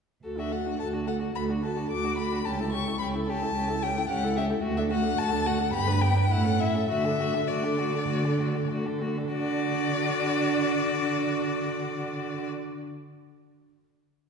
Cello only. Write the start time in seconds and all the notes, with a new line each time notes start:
0.24 D2
0.80 D2
1.35 D2
1.91 D2
2.46 C#2
3.01 C#2
3.55 C#2
4.10 C#2
4.64 D2
5.20 D2
5.75 G2
6.31 A2
6.91 D3
7.50 D3
8.09 D3
8.69 D3
9.31 D3